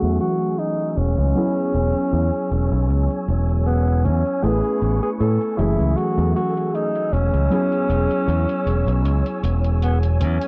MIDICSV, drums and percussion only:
0, 0, Header, 1, 2, 480
1, 0, Start_track
1, 0, Key_signature, 4, "major"
1, 0, Tempo, 769231
1, 849, Time_signature, 4, 2, 24, 8
1, 6538, End_track
2, 0, Start_track
2, 0, Title_t, "Drums"
2, 16, Note_on_c, 9, 42, 36
2, 78, Note_off_c, 9, 42, 0
2, 126, Note_on_c, 9, 42, 80
2, 188, Note_off_c, 9, 42, 0
2, 256, Note_on_c, 9, 42, 35
2, 319, Note_off_c, 9, 42, 0
2, 367, Note_on_c, 9, 42, 58
2, 430, Note_off_c, 9, 42, 0
2, 496, Note_on_c, 9, 42, 34
2, 559, Note_off_c, 9, 42, 0
2, 606, Note_on_c, 9, 42, 83
2, 669, Note_off_c, 9, 42, 0
2, 737, Note_on_c, 9, 42, 36
2, 799, Note_off_c, 9, 42, 0
2, 847, Note_on_c, 9, 42, 59
2, 909, Note_off_c, 9, 42, 0
2, 976, Note_on_c, 9, 42, 35
2, 1039, Note_off_c, 9, 42, 0
2, 1086, Note_on_c, 9, 42, 79
2, 1149, Note_off_c, 9, 42, 0
2, 1217, Note_on_c, 9, 42, 35
2, 1280, Note_off_c, 9, 42, 0
2, 1328, Note_on_c, 9, 42, 54
2, 1391, Note_off_c, 9, 42, 0
2, 1459, Note_on_c, 9, 42, 35
2, 1521, Note_off_c, 9, 42, 0
2, 1569, Note_on_c, 9, 42, 77
2, 1632, Note_off_c, 9, 42, 0
2, 1699, Note_on_c, 9, 42, 34
2, 1761, Note_off_c, 9, 42, 0
2, 1810, Note_on_c, 9, 42, 56
2, 1872, Note_off_c, 9, 42, 0
2, 1939, Note_on_c, 9, 42, 35
2, 2001, Note_off_c, 9, 42, 0
2, 2049, Note_on_c, 9, 42, 82
2, 2111, Note_off_c, 9, 42, 0
2, 2178, Note_on_c, 9, 42, 34
2, 2240, Note_off_c, 9, 42, 0
2, 2289, Note_on_c, 9, 42, 57
2, 2351, Note_off_c, 9, 42, 0
2, 2419, Note_on_c, 9, 42, 33
2, 2481, Note_off_c, 9, 42, 0
2, 2529, Note_on_c, 9, 42, 80
2, 2592, Note_off_c, 9, 42, 0
2, 2657, Note_on_c, 9, 42, 35
2, 2719, Note_off_c, 9, 42, 0
2, 2768, Note_on_c, 9, 42, 57
2, 2831, Note_off_c, 9, 42, 0
2, 2897, Note_on_c, 9, 42, 32
2, 2959, Note_off_c, 9, 42, 0
2, 3007, Note_on_c, 9, 42, 78
2, 3069, Note_off_c, 9, 42, 0
2, 3138, Note_on_c, 9, 42, 34
2, 3200, Note_off_c, 9, 42, 0
2, 3248, Note_on_c, 9, 42, 56
2, 3311, Note_off_c, 9, 42, 0
2, 3377, Note_on_c, 9, 42, 35
2, 3440, Note_off_c, 9, 42, 0
2, 3487, Note_on_c, 9, 42, 76
2, 3550, Note_off_c, 9, 42, 0
2, 3619, Note_on_c, 9, 42, 32
2, 3681, Note_off_c, 9, 42, 0
2, 3729, Note_on_c, 9, 42, 57
2, 3791, Note_off_c, 9, 42, 0
2, 3859, Note_on_c, 9, 42, 34
2, 3922, Note_off_c, 9, 42, 0
2, 3971, Note_on_c, 9, 42, 79
2, 4033, Note_off_c, 9, 42, 0
2, 4101, Note_on_c, 9, 42, 33
2, 4163, Note_off_c, 9, 42, 0
2, 4211, Note_on_c, 9, 42, 55
2, 4273, Note_off_c, 9, 42, 0
2, 4339, Note_on_c, 9, 42, 34
2, 4402, Note_off_c, 9, 42, 0
2, 4450, Note_on_c, 9, 42, 80
2, 4513, Note_off_c, 9, 42, 0
2, 4578, Note_on_c, 9, 42, 34
2, 4640, Note_off_c, 9, 42, 0
2, 4689, Note_on_c, 9, 42, 56
2, 4752, Note_off_c, 9, 42, 0
2, 4818, Note_on_c, 9, 42, 34
2, 4881, Note_off_c, 9, 42, 0
2, 4929, Note_on_c, 9, 42, 81
2, 4991, Note_off_c, 9, 42, 0
2, 5060, Note_on_c, 9, 42, 33
2, 5123, Note_off_c, 9, 42, 0
2, 5169, Note_on_c, 9, 42, 54
2, 5231, Note_off_c, 9, 42, 0
2, 5299, Note_on_c, 9, 42, 35
2, 5361, Note_off_c, 9, 42, 0
2, 5410, Note_on_c, 9, 42, 77
2, 5472, Note_off_c, 9, 42, 0
2, 5541, Note_on_c, 9, 42, 33
2, 5603, Note_off_c, 9, 42, 0
2, 5650, Note_on_c, 9, 42, 56
2, 5712, Note_off_c, 9, 42, 0
2, 5779, Note_on_c, 9, 42, 34
2, 5841, Note_off_c, 9, 42, 0
2, 5889, Note_on_c, 9, 42, 77
2, 5952, Note_off_c, 9, 42, 0
2, 6018, Note_on_c, 9, 42, 32
2, 6081, Note_off_c, 9, 42, 0
2, 6130, Note_on_c, 9, 42, 56
2, 6192, Note_off_c, 9, 42, 0
2, 6259, Note_on_c, 9, 42, 31
2, 6322, Note_off_c, 9, 42, 0
2, 6369, Note_on_c, 9, 42, 80
2, 6432, Note_off_c, 9, 42, 0
2, 6499, Note_on_c, 9, 42, 35
2, 6538, Note_off_c, 9, 42, 0
2, 6538, End_track
0, 0, End_of_file